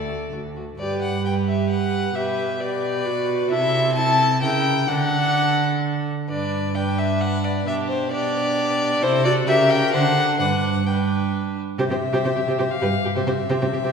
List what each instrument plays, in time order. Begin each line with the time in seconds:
Already playing: cello D2, viola A4, violin D5
0.08 violin F#4
0.32 cello D2, violin F#4
0.56 violin F#4
0.78 cello G2, viola G4, violin B4 D5
1.02 violin F#5
1.25 viola G4, violin B4 G5
1.48 violin E5
1.70 violin F#5
2.15 cello B2, viola G4, violin B4 E5
2.60 viola G4, violin B4 D5
3.05 viola F#4
3.51 cello C3, viola E4, violin A4 E5
3.96 viola E4, violin A4 A5
4.42 cello C#3, viola E4, violin A#4 G5
4.88 cello D3, viola D4, violin A4 F#5
6.29 cello G2, viola D4, violin B4 D5
6.75 viola D4, violin B4 G5
6.99 violin E5
7.21 violin F#5
7.44 violin D5
7.66 cello B2, viola D4, violin G4 E5
7.89 violin C5
8.12 viola D4, violin G4 D5
9.02 cello C3, viola E4, violin A4 C5
9.24 viola F#4, violin D5
9.47 cello C#3, viola G4, violin A#4 E5
9.70 violin G5
9.92 cello D3, viola D4, violin C5 F#5
10.39 cello G2, viola D4, violin B4 F#5
10.86 viola D4, violin B4 G5
11.78 cello C3, viola G4, violin C5 E5
11.90 cello C3, viola G4, violin C5
12.12 cello C3, viola G4, violin C5
12.24 cello C3, viola G4, violin C5
12.35 cello C3, viola G4, violin G4
12.47 cello C3, viola G4, violin C5
12.58 cello C3, viola G4, violin C5
12.70 violin F5
12.81 cello G2, viola G4, violin B4
13.04 cello G2, viola G4, violin G4
13.15 cello C3, viola G4, violin C5 E5
13.27 cello C3, viola G4, violin C5
13.50 cello C3, viola G4, violin C5
13.61 cello C3, viola G4, violin C5
13.73 cello C3, viola G4, violin G4
13.84 cello C3, viola G4, violin C5